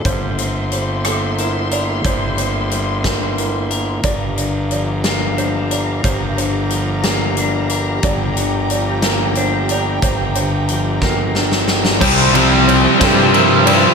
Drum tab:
CC |------------|------------|------------|------------|
RD |------------|------------|------------|------------|
HH |x-x-x-x-x-x-|x-x-x-x-x-x-|x-x-x-x-x-x-|x-x-x-x-x-x-|
SD |------r-----|------o-----|------o-----|------o-----|
BD |o-----------|o-----o-----|o-----------|o-----------|

CC |------------|------------|x-----------|
RD |------------|------------|--x-x-x-x-x-|
HH |x-x-x-x-x-x-|x-x-x-------|------------|
SD |------o-----|------o-oooo|------o-----|
BD |o-----------|o-----o-----|o-----o-----|